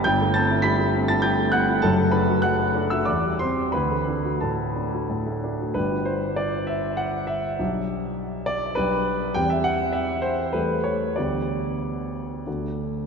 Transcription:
X:1
M:3/4
L:1/16
Q:1/4=98
K:G
V:1 name="Grand piano"
[gg']2 [aa']2 [bb']3 [aa'] [gg']2 [ff']2 | [Aa]2 [Bb]2 [ff']3 [ee'] [dd']2 [cc']2 | [Bb]4 [Aa]4 z4 | B2 c2 d2 e2 f2 e2- |
e6 d2 B4 | g e f2 e2 c2 B2 ^c2 | d8- d2 z2 |]
V:2 name="Grand piano"
[G,,,G,,] A, C E G, A, C E G, A, C E | [F,,,F,,] A, D F F, A, D F E,, G, C G | D,, A, D F A,, A, D F A,, A, D F | [G,,,G,DG]12 |
[B,,,G,DG]8 [B,,,G,DG]4 | [E,,G,CG]8 [E,,G,A,A]4 | [D,,G,B,G]8 [D,,A,DF]4 |]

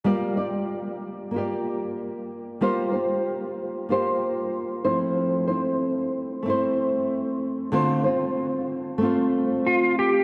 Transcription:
X:1
M:4/4
L:1/8
Q:"Swing 16ths" 1/4=94
K:Gdor
V:1 name="Electric slide guitar"
z8 | z8 | z8 | z6 F G |]
V:2 name="Nylon-string guitar"
[G,B,FGd] [FGd]3 [B,FGd]4 | [G,B,FGc] [FGc]3 [B,FGc]3 [F,A,CEc]- | [F,A,CEc] [CEc]3 [A,CEc]4 | [D,A,CFc] [CFc]3 [A,CFc]4 |]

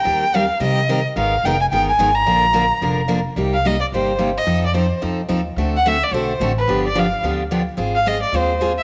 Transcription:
X:1
M:4/4
L:1/8
Q:"Swing" 1/4=217
K:Bbmix
V:1 name="Violin"
g2 f2 e3 z | f2 g a g a2 b- | b4- b z3 | [K:Cm] z f e d c2 z e- |
e d c2 z4 | z ^f =e d c2 z =B- | =B d f2 z4 | z f e d c2 z =e |]
V:2 name="Steel-string acoustic guitar"
[E,G,CGB] z [E,G,CGB] z [E,G,CGB] z [E,G,CGB] z | [E,A,_CEB] z [E,A,CEB] z [E,A,CEB] z [E,A,CEB] z | [D,F,B,DB] z [D,F,B,DB] z [D,F,B,DB] z [D,F,B,DB] z | [K:Cm] [C,G,B,EG] z [C,G,B,EG] z [C,G,B,EG] z [C,G,B,EG] z |
[F,CE=A] z [F,CEA] z [F,CEA] z [F,CEA] z | [D,=A,C^F=A] z [D,A,CFA] z [D,A,CFA] z [D,A,CFA] z | [D,F,=B,DG] z [D,F,B,DG] z [D,F,B,DG] z [D,F,B,DG] z | [A,CFA] z [A,CFA] z [A,CFA] z [A,CFA] z |]
V:3 name="Upright bass" clef=bass
E,,4 C,4 | A,,,2 F,,,2 G,,,2 A,,,2 | B,,,4 F,,,4 | [K:Cm] C,,4 G,,,4 |
F,,4 F,,2 E,,2 | D,,4 =B,,,2 =A,,,2 | G,,,4 D,,4 | A,,,4 E,,4 |]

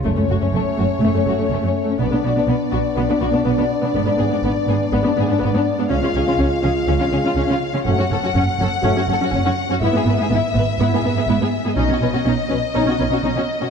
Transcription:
X:1
M:4/4
L:1/16
Q:1/4=123
K:F#m
V:1 name="Violin section"
c16 | d16- | d16 | ^e16 |
f16 | e16 | ^d16 |]
V:2 name="Violin section"
A, C F C A, z F z A, C F C A, C z C | B, D F D B, z F z B, D F D B, D z D | B, D G D B, z G z B, D G D B, D z D | C ^E G E C z G z C E G E C E z E |
C F A F C z A z C F A F C F z F | E G B G E z B z E G B G E G z G | ^D F B F D z B z D F B F D F z F |]
V:3 name="French horn section"
[A,C]16 | [B,D]16- | [B,D]16 | [G,^E]16 |
[A,F]2 z6 [A,F]2 z6 | [B,E]2 z6 [B,E]2 z6 | [C^D]2 z6 [CD]2 z6 |]
V:4 name="Viola section"
A, A, A, A, A, z A, z A, A, A, A, A, A, z A, | B, B, B, B, B, z B, z B, B, B, B, B, B, z B, | B, B, B, B, B, z B, z B, B, B, B, B, B, z B, | C C C C C z C z C C C C C C z C |
C C C C C z C z C C C C C C z C | B, B, B, B, B, z B, z B, B, B, B, B, B, z B, | C C C C C z C z C C C C C C z C |]
V:5 name="Cello section" clef=bass
F,, F,, F,, F,, F,, z F,, z F,, F,, F,, F,, F,, F,, z F,, | B,, B,, B,, B,, B,, z B,, z B,, B,, B,, B,, B,, B,, z B,, | G,, G,, G,, G,, G,, z G,, z G,, G,, G,, G,, G,, G,, z G,, | C, C, C, C, C, z C, z C, C, C, C, C, C, z C, |
F,, F,, F,, F,, F,, z F,, z F,, F,, F,, F,, F,, F,, z F,, | G,, G,, G,, G,, G,, z G,, z G,, G,, G,, G,, G,, G,, z G,, | B,, B,, B,, B,, B,, z B,, z B,, B,, B,, B,, B,, B,, z B,, |]
V:6 name="Double bass section" clef=bass
F,,, z F,,, z F,,, z F,,, z F,,, z F,,, z F,,, z3 | B,,, z B,,, z B,,, z B,,, z B,,, z B,,, z B,,, z3 | G,,, z G,,, z G,,, z G,,, z G,,, z G,,, z G,,, z3 | C,, z C,, z C,, z C,, z C,, z C,, z C,, z3 |
F,,, z F,,, z F,,, z F,,, z F,,, z F,,, z F,,, z3 | G,,, z G,,, z G,,, z G,,, z G,,, z G,,, z G,,, z3 | B,,, z B,,, z B,,, z B,,, z B,,, z B,,, z B,,, z3 |]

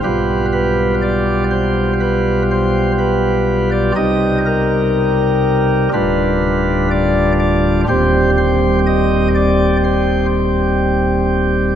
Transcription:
X:1
M:4/4
L:1/16
Q:1/4=61
K:Cm
V:1 name="Pipe organ"
=B2 B2 d2 c2 B2 c2 B3 d | e2 B6 =B4 d2 d2 | c2 c2 e2 d2 c2 z6 |]
V:2 name="Pipe organ" clef=bass
[=B,,,=B,,G,FG]16 | [C,,C,G,EG]8 [D,,,D,,G,DF]8 | [E,,,E,,G,CG]16 |]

